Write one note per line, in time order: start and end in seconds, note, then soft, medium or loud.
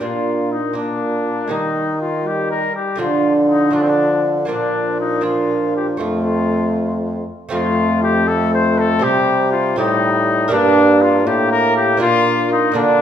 0.00 1.52 A#2 medium
0.00 1.46 A#2 soft
0.00 0.72 A#3 soft
0.00 0.59 A#3 medium
0.00 0.73 D4 soft
0.00 0.54 F4 medium
0.52 0.76 D#4 medium
0.73 1.46 A#3 soft
0.73 1.51 A#3 medium
0.73 1.47 D4 soft
0.73 1.53 D4 medium
1.48 2.71 D#3 medium
1.48 2.68 D#3 medium
1.48 1.98 G3 medium
1.48 2.94 A#3 soft
1.48 2.94 D#4 soft
1.52 2.01 D#4 medium
2.01 2.28 F4 medium
2.25 3.01 G3 medium
2.25 2.50 G4 medium
2.50 2.74 A#4 medium
2.76 2.99 G4 medium
2.96 4.45 D3 medium
2.96 3.74 F3 medium
2.96 3.69 A3 soft
2.96 3.70 D4 soft
2.96 3.71 F4 soft
3.00 3.35 F4 medium
3.50 3.74 D#4 medium
3.71 4.47 F3 medium
3.71 4.45 A3 soft
3.71 4.45 D4 soft
3.71 3.84 D4 medium
3.71 4.46 F4 soft
3.82 3.90 C4 medium
3.89 4.28 D4 medium
4.45 5.97 A#2 medium
4.45 5.96 A#2 medium
4.45 5.22 F3 medium
4.45 5.20 A#3 soft
4.45 5.21 D4 soft
4.45 5.21 F4 soft
4.50 4.96 D4 medium
5.00 5.24 D#4 medium
5.21 6.02 F3 medium
5.21 5.96 A#3 soft
5.21 5.97 D4 soft
5.21 5.97 F4 soft
5.21 5.74 F4 medium
5.76 5.87 G4 medium
5.97 7.24 F2 medium
5.97 7.23 F2 soft
5.97 7.47 A3 soft
5.97 7.27 A3 medium
5.97 7.47 C4 soft
5.97 7.48 F4 soft
5.97 7.25 F4 medium
7.49 9.04 F2 medium
7.49 8.99 F2 medium
7.49 8.97 A3 medium
7.49 8.97 C4 medium
7.49 8.98 F4 medium
7.53 8.24 A3 medium
7.53 8.00 F4 loud
8.03 8.29 G4 medium
8.27 9.05 A3 medium
8.27 8.53 A4 loud
8.54 8.80 C5 loud
8.79 9.05 A4 loud
8.99 9.73 C3 medium
8.99 9.79 C3 medium
8.99 9.73 C4 medium
8.99 9.74 G4 medium
9.04 9.77 G3 medium
9.04 9.52 G4 loud
9.53 9.77 F4 loud
9.76 10.52 A2 medium
9.76 10.49 A2 medium
9.76 10.54 G3 medium
9.76 10.48 C4 medium
9.76 10.51 D#4 loud
9.76 10.47 G4 medium
10.48 11.22 G2 medium
10.48 11.96 D4 medium
10.48 11.96 G4 medium
10.48 11.95 A#4 medium
10.52 11.28 G2 medium
10.52 11.25 A#3 medium
10.52 11.03 D4 loud
11.02 11.29 F4 loud
11.26 12.02 A2 medium
11.26 11.97 A2 medium
11.26 11.99 A#3 medium
11.26 11.51 G4 medium
11.51 11.76 A#4 loud
11.77 12.01 G4 loud
11.97 12.75 A#2 medium
11.97 12.72 A#2 medium
11.97 12.70 A#3 medium
11.97 12.74 A#3 medium
11.97 12.72 D4 medium
11.97 12.73 F4 medium
12.01 12.50 F4 loud
12.53 12.75 D#4 medium
12.72 13.02 D3 medium
12.72 13.02 A#3 medium
12.72 13.02 D4 medium
12.72 13.02 F4 medium
12.76 13.02 D4 loud